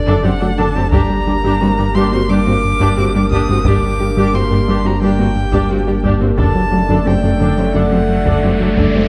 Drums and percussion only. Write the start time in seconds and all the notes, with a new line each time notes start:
0.92 taiko
2.80 taiko
3.31 taiko
3.65 taiko
5.52 taiko
6.04 taiko
6.38 taiko
8.25 taiko
8.77 taiko